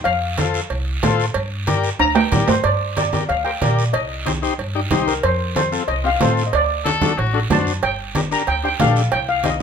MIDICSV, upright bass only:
0, 0, Header, 1, 2, 480
1, 0, Start_track
1, 0, Key_signature, -2, "minor"
1, 0, Tempo, 323625
1, 85, Time_signature, 4, 2, 24, 8
1, 14271, End_track
2, 0, Start_track
2, 0, Title_t, "Upright bass"
2, 0, Program_c, 0, 32
2, 80, Note_on_c, 0, 41, 94
2, 848, Note_off_c, 0, 41, 0
2, 1041, Note_on_c, 0, 36, 82
2, 1425, Note_off_c, 0, 36, 0
2, 1519, Note_on_c, 0, 45, 98
2, 1904, Note_off_c, 0, 45, 0
2, 1998, Note_on_c, 0, 43, 100
2, 2766, Note_off_c, 0, 43, 0
2, 2952, Note_on_c, 0, 38, 94
2, 3339, Note_off_c, 0, 38, 0
2, 3436, Note_on_c, 0, 45, 87
2, 3654, Note_off_c, 0, 45, 0
2, 3678, Note_on_c, 0, 43, 83
2, 3894, Note_off_c, 0, 43, 0
2, 3919, Note_on_c, 0, 43, 83
2, 4687, Note_off_c, 0, 43, 0
2, 4881, Note_on_c, 0, 38, 84
2, 5264, Note_off_c, 0, 38, 0
2, 5357, Note_on_c, 0, 46, 88
2, 5742, Note_off_c, 0, 46, 0
2, 5838, Note_on_c, 0, 36, 88
2, 6607, Note_off_c, 0, 36, 0
2, 6797, Note_on_c, 0, 43, 82
2, 7182, Note_off_c, 0, 43, 0
2, 7281, Note_on_c, 0, 36, 83
2, 7665, Note_off_c, 0, 36, 0
2, 7763, Note_on_c, 0, 41, 91
2, 8531, Note_off_c, 0, 41, 0
2, 8723, Note_on_c, 0, 36, 83
2, 9107, Note_off_c, 0, 36, 0
2, 9212, Note_on_c, 0, 45, 94
2, 9592, Note_off_c, 0, 45, 0
2, 9685, Note_on_c, 0, 38, 88
2, 10453, Note_off_c, 0, 38, 0
2, 10644, Note_on_c, 0, 33, 87
2, 11028, Note_off_c, 0, 33, 0
2, 11127, Note_on_c, 0, 42, 90
2, 11510, Note_off_c, 0, 42, 0
2, 11604, Note_on_c, 0, 31, 87
2, 12372, Note_off_c, 0, 31, 0
2, 12566, Note_on_c, 0, 38, 82
2, 12949, Note_off_c, 0, 38, 0
2, 13056, Note_on_c, 0, 34, 90
2, 13435, Note_off_c, 0, 34, 0
2, 13530, Note_on_c, 0, 36, 92
2, 14271, Note_off_c, 0, 36, 0
2, 14271, End_track
0, 0, End_of_file